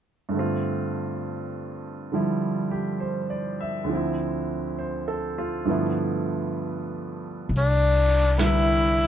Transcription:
0.29 grand piano G2 D3
0.34 grand piano A3 C4
0.39 grand piano F4
2.12 grand piano D3 F3 G3 E4
2.71 grand piano G4
3.00 grand piano C5
3.30 grand piano D5
3.61 grand piano E5
3.84 grand piano D2 D3
3.89 grand piano F3 C4
3.95 grand piano E4
4.79 grand piano C5
5.08 grand piano A4
5.38 grand piano F4
5.65 grand piano G2 D3 F3 A3
5.70 grand piano B3 E4
7.49 upright bass C2, brush sweep
7.57 tenor saxophone D4
8.38 grand piano C3 D3 G3 E4 B4, snare, hi-hat pedal
8.46 tenor saxophone E4

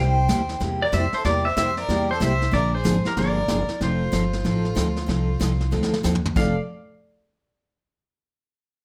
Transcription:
Already playing: upright bass C2, steel-string acoustic guitar C3 G3 A#3 E4 G4, fiddle C5
0.00 pedal steel guitar G5
0.28 upright bass D#2, steel-string acoustic guitar C3 G3 A#3 E4 G4, kick, snare, hi-hat pedal
0.49 snare
0.60 upright bass E2, steel-string acoustic guitar C3 G3 A#3 E4 G4, brush sweep, kick, snare
0.82 fiddle A#4, pedal steel guitar D5
0.92 upright bass F2, steel-string acoustic guitar C3 G3 A#3 E4 G4, fiddle C5, pedal steel guitar E5, kick, snare, hi-hat pedal
1.13 fiddle A4, pedal steel guitar C5, muted upright bass stroke, snare
1.25 upright bass E2, steel-string acoustic guitar C3 G3 A#3 E4 G4, fiddle A#4, pedal steel guitar D5, brush sweep, kick, snare
1.45 fiddle C5, pedal steel guitar E5
1.57 upright bass F2, steel-string acoustic guitar C3 G3 A#3 E4 G4, fiddle C5, pedal steel guitar E5, kick, snare, hi-hat pedal
1.77 fiddle A#4, pedal steel guitar D5, snare
1.89 upright bass E2, steel-string acoustic guitar C3 G3 A#3 E4 G4, brush sweep, kick, snare
2.11 fiddle A4, pedal steel guitar C5
2.20 upright bass C2, steel-string acoustic guitar C3 G3 A#3 E4 G4, fiddle C5, pedal steel guitar E5, kick, snare, hi-hat pedal
2.42 snare
2.51 upright bass A#1, steel-string acoustic guitar D3 F3 A#3 D4 G#4, fiddle A#4, pedal steel guitar D5, brush sweep, kick, snare
2.74 fiddle G#4, pedal steel guitar C5
2.84 upright bass G#1, steel-string acoustic guitar D3 F3 A#3 D4 G#4, kick, snare, hi-hat pedal
3.05 fiddle G4, pedal steel guitar A#4, muted upright bass stroke, snare
3.17 upright bass G1, steel-string acoustic guitar D3 F3 A#3 D4 G#4, fiddle A#4, pedal steel guitar D5, brush sweep, kick, snare
3.48 upright bass F#1, steel-string acoustic guitar D3 F3 A#3 D4 G#4, kick, snare, hi-hat pedal
3.68 muted upright bass stroke, snare
3.81 upright bass F1, steel-string acoustic guitar F3 C4 D#4 A4, fiddle F4, pedal steel guitar C5, brush sweep, kick, snare
4.12 upright bass G1, steel-string acoustic guitar F3 C4 D#4 A4, kick, snare, hi-hat pedal
4.33 snare
4.44 upright bass A1, steel-string acoustic guitar F3 C4 D#4 A4, brush sweep, kick, snare
4.65 snare
4.75 upright bass D2, steel-string acoustic guitar F3 C4 D#4 A4, kick, snare, hi-hat pedal
4.97 snare
5.06 upright bass C2, steel-string acoustic guitar F3 C4 D#4 A4, brush sweep, kick, snare
5.40 upright bass C2, steel-string acoustic guitar F3 C4 D#4 A4, kick, snare, hi-hat pedal
5.60 snare
5.71 upright bass D2, steel-string acoustic guitar F3 C4 D#4 A4, snare
5.83 snare
5.94 snare
6.03 upright bass D#2, steel-string acoustic guitar F3 C4 D#4 A4, snare, hi-hat pedal
6.15 floor tom
6.26 floor tom
6.36 upright bass F1, steel-string acoustic guitar F3 C4 D#4 A4, fiddle D5, pedal steel guitar F5, kick, snare, crash

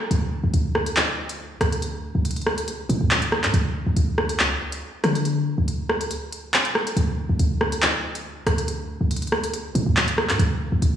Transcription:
0.11 808-style bass D2, closed hi-hat
0.44 808-style bass D2
0.54 808-style bass D2, closed hi-hat
0.75 cross-stick
0.86 closed hi-hat
0.97 clap
1.29 closed hi-hat
1.61 808-style bass D2, cross-stick, closed hi-hat
1.72 closed hi-hat
1.82 closed hi-hat
2.15 808-style bass D2
2.25 closed hi-hat
2.31 closed hi-hat
2.36 closed hi-hat
2.41 closed hi-hat
2.47 cross-stick
2.58 closed hi-hat
2.68 closed hi-hat
2.89 808-style bass A2, closed hi-hat
3.01 808-style bass D2
3.11 clap, closed hi-hat
3.22 closed hi-hat
3.32 cross-stick
3.44 808-style bass A2, clap, closed hi-hat
3.54 808-style bass D2, closed hi-hat
3.86 808-style bass D2
3.96 808-style bass D2, closed hi-hat
4.18 cross-stick
4.29 closed hi-hat
4.39 808-style bass C2, clap
4.51 808-style bass D2
4.72 closed hi-hat
5.04 808-style bass D3, cross-stick, closed hi-hat
5.15 closed hi-hat
5.25 closed hi-hat
5.58 808-style bass D2
5.68 closed hi-hat
5.89 cross-stick
6.01 closed hi-hat
6.11 closed hi-hat
6.32 closed hi-hat
6.54 clap, closed hi-hat
6.65 closed hi-hat
6.75 cross-stick
6.87 closed hi-hat
6.97 808-style bass D2, closed hi-hat
7.29 808-style bass D2
7.39 808-style bass D2, closed hi-hat
7.61 cross-stick
7.72 closed hi-hat
7.82 clap
8.15 closed hi-hat
8.47 808-style bass D2, cross-stick, closed hi-hat
8.58 closed hi-hat
8.68 closed hi-hat
9.01 808-style bass D2
9.11 closed hi-hat
9.16 closed hi-hat
9.22 closed hi-hat
9.27 closed hi-hat
9.32 cross-stick
9.44 closed hi-hat
9.54 closed hi-hat
9.75 808-style bass A2, closed hi-hat
9.86 808-style bass D2
9.96 clap, closed hi-hat
10.08 closed hi-hat
10.18 cross-stick
10.29 808-style bass A2, clap, closed hi-hat
10.39 808-style bass D2, closed hi-hat
10.72 808-style bass D2
10.82 808-style bass D2, closed hi-hat

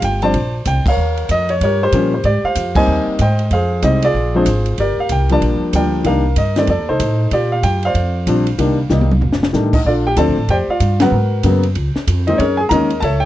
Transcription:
Already playing: grand piano F4 G4
0.02 upright bass G1, grand piano G5, kick, hi-hat pedal, ride
0.22 grand piano F3 G3 C4 D4 C5 D5 A5, ride
0.34 upright bass A#1, kick, ride
0.65 upright bass C2, grand piano G5, kick, hi-hat pedal, ride
0.85 grand piano A#4 F5, muted upright bass stroke, kick, crash
0.90 grand piano C#5
0.97 upright bass D#2
1.18 ride
1.29 upright bass F2, grand piano D#5, kick, hi-hat pedal, ride
1.49 grand piano C#5, ride
1.61 upright bass G2, grand piano G4 C#5, kick, ride
1.65 grand piano A#4
1.83 grand piano G4 C5
1.92 upright bass A#2, grand piano F3 G3 A#3 C#4, kick, hi-hat pedal, ride
2.14 grand piano C5
2.24 upright bass G#2, grand piano G4 D5, kick, ride
2.44 grand piano C5 F5, muted upright bass stroke
2.55 upright bass F2, kick, hi-hat pedal, ride
2.75 grand piano G3 A#3 C4 D#4 C5 D#5 G#5, kick, crash
2.87 upright bass D#2
3.07 muted upright bass stroke
3.19 upright bass G#2, grand piano C5 D#5 G5, kick, hi-hat pedal, ride
3.39 ride
3.51 upright bass F2, grand piano G#4 C5 F5, kick, ride
3.82 upright bass C2, grand piano G3 G#3 C4 D#4 D#5, kick, hi-hat pedal, ride
4.02 grand piano F4 G#4 D5, ride
4.14 upright bass A#1, kick
4.35 grand piano F3 G#3 C4 D4 F4 G#4 C5
4.46 upright bass G#1, kick, hi-hat pedal, ride
4.66 ride
4.78 upright bass G1, grand piano G4 A#4 D5, kick, ride
4.97 grand piano F5, muted upright bass stroke
5.09 upright bass C2, grand piano G5, kick, hi-hat pedal, ride
5.29 grand piano F3 G3 A#3 D4 A5, ride
5.33 grand piano D5
5.41 upright bass A#1, kick, ride
5.61 muted upright bass stroke
5.73 upright bass D2, grand piano F3 G3 A#3 D4 A#4 D5 G5, kick, hi-hat pedal, ride
6.04 upright bass C2, grand piano D#3 G3 A#3 D4 A#4 F5, kick, ride
6.36 upright bass G2, grand piano D#5, kick, hi-hat pedal, ride
6.56 grand piano D#3 G3 A3 C4 D5, snare, ride
6.67 upright bass F2, grand piano A4 D5, kick, ride
6.78 upright bass D#2
6.89 upright bass C2, grand piano D#4 A4 C5
6.99 upright bass A2, kick, hi-hat pedal, ride
7.31 upright bass A#2, grand piano F4 G4 D5, kick, ride
7.52 grand piano F5
7.63 upright bass F#2, grand piano G5, kick, hi-hat pedal, ride
7.83 grand piano C5 D5 F5, ride
7.94 upright bass F2, kick, ride
8.26 upright bass A#1, grand piano F3 G3 C4 D4, kick, hi-hat pedal, ride
8.47 ride
8.58 upright bass C2, grand piano D#3 G3 A#3 D4, kick, ride
8.89 upright bass C2, grand piano D#3 G3 A#3 D#4, snare, hi-hat pedal
9.01 high tom
9.11 mid tom
9.21 upright bass F1, floor tom
9.32 snare
9.43 snare
9.53 upright bass A1, grand piano D#3 G3 A3 D4, snare, hi-hat pedal
9.73 grand piano D#4 D#5, kick, crash
9.85 upright bass A#1, grand piano D4 F4 A4 D5, kick
10.07 grand piano G4 G5
10.16 upright bass D2, grand piano D3 F3 A3 C4 A4 D5 A5, kick, hi-hat pedal, ride
10.27 upright bass A#1
10.37 upright bass A1
10.48 upright bass F2, grand piano G4 C5 D5 G5, kick, ride
10.68 grand piano F4 D5 F5, muted upright bass stroke
10.80 upright bass G2, kick, hi-hat pedal, ride
11.00 grand piano C#3 F#3 A#3 B3 F#4 A#4 B4 F#5, snare, ride
11.11 upright bass G#2
11.43 upright bass F#2, grand piano C#3 F#3 A#3 B3, kick, hi-hat pedal, ride
11.63 ride
11.75 upright bass C#2, kick, ride
11.95 muted upright bass stroke, snare
12.07 upright bass F2, kick, hi-hat pedal, ride
12.27 grand piano D#3 G#3 A#3 C4 D#4 D#5, ride
12.38 upright bass F#2, grand piano C#4 G#4 A#4 C#5, kick, ride
12.57 grand piano G#4 G#5
12.69 upright bass D#2, grand piano D#3 G#3 A#3 C#4 A#4 D#5 A#5, kick, hi-hat pedal, ride
12.90 ride
13.00 upright bass C#2, grand piano A4 E5 A5, kick, ride
13.04 grand piano C#5
13.20 grand piano G5

